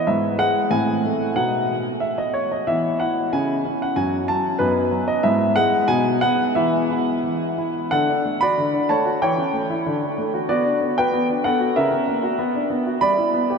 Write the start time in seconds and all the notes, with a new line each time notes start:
0.07 G#2 B3 E4 E5
0.39 G#3 F#5
0.71 A2 C4 E4 G#5
1.04 A3
1.36 B2 B3 D#4 F#5
2.00 E5
2.18 D#5
2.34 C#5
2.52 D#5
2.67 E3 B3 E4 E5
3.00 E4 F#5
3.33 C#3 C#4 E4 G#5
3.65 C#4
3.82 F#5
3.96 F#2 C#4 F#4 G#5
4.28 F#3 A5
4.59 F#2 B3 D#4 B4
4.91 F#3
5.08 D#5
5.23 G#2 B3 E4 E5
5.56 G#3 F#5
5.88 B2 B3 D#4 G#5
6.21 B3 F#5
6.55 E3 B3 E4 E5
6.90 E4
7.24 E3
7.58 E4
7.91 D3 A4 F#5
8.09 D4
8.25 A3
8.41 F#4 D5 B5
8.58 D3
8.73 D4
8.89 A3 C#5 A5
9.05 F#4
9.22 E3 C#5 G5
9.38 C#4
9.53 A3
9.70 E4
9.86 D3
10.02 D4
10.18 A3
10.34 F#4
10.49 B3 F#4 D5
10.65 D4
10.82 B3
10.98 F#4 B4 G5
11.14 B3
11.29 D4
11.44 B3 A4 F#5
11.60 F#4
11.76 C#3 A#4 E5
11.91 C#4
12.07 A#3
12.23 F#4
12.39 B3
12.55 D4
12.70 B3
12.86 F#4
13.01 G3 D5 B5
13.18 E4
13.34 B3
13.50 G4